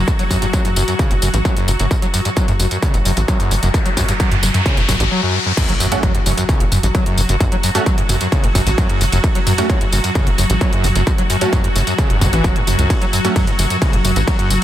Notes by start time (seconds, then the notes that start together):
Already playing: F#3 F#4
0.08 F#2, kick, closed hi-hat, tambourine
0.19 F#3, closed hi-hat, tambourine
0.30 F#2, kick, open hi-hat, tambourine
0.42 G2, closed hi-hat, tambourine
0.53 F#3, kick, closed hi-hat, tambourine
0.65 F#2, closed hi-hat, mid tom, tambourine
0.76 F#1 F#2, open hi-hat, tambourine
0.88 F#2, closed hi-hat, tambourine
0.99 C#3, kick, closed hi-hat, tambourine
1.11 F#1 F#2, closed hi-hat, tambourine
1.22 F#1 F#2, open hi-hat, tambourine
1.34 A1 G2, closed hi-hat, tambourine
1.45 F#3, kick, closed hi-hat, tambourine
1.56 F#2, closed hi-hat, tambourine
1.68 F#1 G2, open hi-hat, tambourine
1.79 F#1 F#2, closed hi-hat, tambourine
1.91 F#2, kick, closed hi-hat, tambourine, riser
2.02 F#3, closed hi-hat, tambourine
2.14 F#2, open hi-hat, tambourine
2.25 G2, closed hi-hat, tambourine
2.37 F#3, kick, closed hi-hat, tambourine
2.48 F#2, closed hi-hat, mid tom, tambourine
2.60 F#1 F#2, open hi-hat, tambourine
2.71 F#2, closed hi-hat, tambourine
2.82 C#3, kick, closed hi-hat, tambourine
2.94 F#1 F#2, closed hi-hat, tambourine
3.05 F#1 F#2, open hi-hat, tambourine
3.17 A1 G2, closed hi-hat, tambourine
3.28 F#3, kick, closed hi-hat, tambourine
3.40 F#2, closed hi-hat, tambourine
3.51 F#1 G2, open hi-hat, tambourine
3.63 F#1 F#2, closed hi-hat, tambourine
3.74 F#2, kick, closed hi-hat, tambourine
3.86 F#3, closed hi-hat, tambourine
3.97 F#2, kick, open hi-hat, tambourine
4.09 G2, closed hi-hat, tambourine
4.20 F#3, kick, closed hi-hat, tambourine
4.31 F#2, closed hi-hat, mid tom, tambourine
4.43 F#1 F#2, open hi-hat, tambourine
4.54 F#2, closed hi-hat, mid tom, tambourine
4.66 C#3, kick, closed hi-hat, tambourine
4.77 F#1 F#2, closed hi-hat, tambourine
4.89 F#1 F#2, kick, open hi-hat, tambourine
5.00 A1 G2, closed hi-hat, tambourine
5.11 F#3
5.23 F#2
5.34 G2
5.46 F#2
5.57 F#2 F#3 F#4, kick, closed hi-hat, crash, tambourine, impact
5.69 F#3, closed hi-hat
5.80 F#2, open hi-hat, tambourine
5.92 G2 A3 C#4 F#4, closed hi-hat, tambourine
6.03 F#3, kick, closed hi-hat, mid tom, tambourine
6.14 F#2, closed hi-hat
6.26 F#1 F#2, open hi-hat, tambourine
6.37 F#2, closed hi-hat, tambourine
6.49 C#3, kick, closed hi-hat, tambourine
6.60 F#1 F#2, closed hi-hat
6.72 F#1 F#2, mid tom, open hi-hat, tambourine
6.83 A1 G2, closed hi-hat, tambourine
6.95 F#3, kick, closed hi-hat, tambourine
7.06 F#2, closed hi-hat
7.18 F#1 G2, open hi-hat, tambourine
7.29 F#1 F#2, closed hi-hat, tambourine
7.40 F#2, kick, closed hi-hat, mid tom, tambourine
7.52 F#3, closed hi-hat
7.63 F#2, open hi-hat, tambourine
7.75 G2 A3 C#4 F#4, closed hi-hat, tambourine
7.86 F#3, kick, closed hi-hat, tambourine
7.98 F#2, closed hi-hat
8.09 F#1 F#2, mid tom, open hi-hat, tambourine
8.21 F#2, closed hi-hat, tambourine
8.32 C#3, kick, closed hi-hat, tambourine
8.44 F#1 F#2, closed hi-hat
8.55 F#1 F#2, kick, open hi-hat, tambourine
8.67 A1 G2, closed hi-hat, tambourine
8.78 F#3, kick, closed hi-hat, mid tom, tambourine
8.90 F#2, closed hi-hat
9.01 F#1 G2, open hi-hat, tambourine
9.12 F#1 F#2, closed hi-hat, tambourine
9.24 F#2, kick, closed hi-hat, tambourine
9.35 F#3, closed hi-hat
9.47 F#2, mid tom, open hi-hat, tambourine
9.58 G2 A3 C#4 F#4, closed hi-hat, tambourine
9.70 F#3, kick, closed hi-hat, tambourine
9.81 F#2, closed hi-hat
9.92 F#1 F#2, open hi-hat, tambourine
10.04 F#2, closed hi-hat, tambourine
10.15 C#3, kick, closed hi-hat, mid tom, tambourine
10.27 F#1 F#2, closed hi-hat
10.38 F#1 F#2, open hi-hat, tambourine
10.50 A1 G2, closed hi-hat, tambourine
10.61 F#3, kick, closed hi-hat, tambourine
10.73 F#2, closed hi-hat
10.84 F#1 G2, mid tom, open hi-hat, tambourine
10.96 F#1 F#2, closed hi-hat, tambourine
11.07 F#2, kick, closed hi-hat, tambourine
11.18 F#3, closed hi-hat
11.30 F#2, open hi-hat, tambourine
11.41 G2 A3 C#4 F#4, closed hi-hat, tambourine
11.53 F#3, kick, closed hi-hat, mid tom, tambourine
11.64 F#2, closed hi-hat
11.75 F#1 F#2, open hi-hat, tambourine
11.87 F#2, closed hi-hat, tambourine
11.98 C#3, kick, closed hi-hat, tambourine
12.10 F#1 F#2, closed hi-hat
12.21 F#1 C#3, kick, mid tom, open hi-hat, tambourine
12.33 A1 E3, closed hi-hat, tambourine
12.44 F#1 F#3, kick, closed hi-hat, tambourine
12.56 F#2, closed hi-hat
12.67 F#1 F#2, open hi-hat, tambourine
12.79 C#2 F#2, closed hi-hat, tambourine
12.90 F#2, kick, closed hi-hat, ride, tambourine
13.02 F#3, closed hi-hat
13.13 F#2, open hi-hat, tambourine
13.24 G2 A3 C#4 F#4, closed hi-hat, tambourine
13.36 F#3, kick, closed hi-hat, mid tom, ride, tambourine
13.47 F#2, closed hi-hat
13.59 F#1 F#2, open hi-hat, tambourine
13.70 F#2, closed hi-hat, tambourine
13.82 C#3, kick, closed hi-hat, ride, tambourine
13.93 F#1 F#2, closed hi-hat
14.05 F#1 F#2, mid tom, open hi-hat, tambourine
14.16 A1 G2, closed hi-hat, tambourine
14.27 F#3, kick, closed hi-hat, ride, tambourine
14.39 F#2, closed hi-hat
14.50 F#1 G2, open hi-hat, tambourine